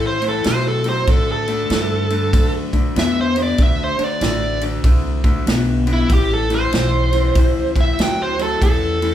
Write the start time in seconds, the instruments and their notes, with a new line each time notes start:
Already playing: clean electric guitar A2 E3, upright bass A2
0.07 lead electric guitar C5
0.22 clean electric guitar A2 E3, ride
0.28 lead electric guitar A4
0.44 clean electric guitar A2 F#3, upright bass B2, lead electric guitar C5, snare, ride
0.68 lead electric guitar A4
0.84 clean electric guitar A2 F#3, ride
0.89 lead electric guitar C5
1.07 upright bass A2, clean electric guitar D3 A3, lead electric guitar A4, kick, ride
1.32 lead electric guitar A4
1.48 clean electric guitar D3 A3, ride
1.70 upright bass G2, clean electric guitar D3 A3, snare, ride
2.10 clean electric guitar D3 A3, ride
2.33 upright bass F#2, clean electric guitar D3 A3, kick, ride
2.73 clean electric guitar D3 A3, kick, ride
2.96 upright bass E2, clean electric guitar D3 B3, lead electric guitar E5, snare, ride
3.21 lead electric guitar C5
3.36 clean electric guitar D3 B3, ride
3.42 lead electric guitar D5
3.58 upright bass D2, clean electric guitar D3 A3, kick, ride
3.63 lead electric guitar E5
3.84 lead electric guitar C5
3.99 clean electric guitar D3 A3, muted upright bass stroke, ride
4.04 lead electric guitar D5
4.21 upright bass A1, clean electric guitar D3 A3, lead electric guitar D5, snare, ride
4.61 clean electric guitar D3 A3, ride
4.84 upright bass C2, clean electric guitar D3 A3, kick, ride
5.24 clean electric guitar D3 A3, kick, ride
5.46 upright bass B1, clean electric guitar D3 B3, snare, ride
5.87 clean electric guitar D3 B3, ride
5.93 lead electric guitar E4
6.09 upright bass A1, clean electric guitar A2 E3, kick, ride
6.13 lead electric guitar G4
6.34 lead electric guitar A4
6.50 clean electric guitar A2 E3, ride
6.55 lead electric guitar C5
6.72 upright bass B1, clean electric guitar A2 E3, snare, ride
7.13 clean electric guitar A2 E3, ride
7.35 upright bass C#2, clean electric guitar A2 E3, kick, ride
7.76 clean electric guitar A2 E3, kick, ride
7.81 lead electric guitar E5
7.98 upright bass D2, clean electric guitar A2 F#3, snare, ride
8.02 lead electric guitar G5
8.22 lead electric guitar C5
8.39 clean electric guitar A2 F#3, lead electric guitar A4, ride
8.61 upright bass E2, clean electric guitar A2 E3, lead electric guitar A4, kick, ride
9.02 clean electric guitar A2 E3, ride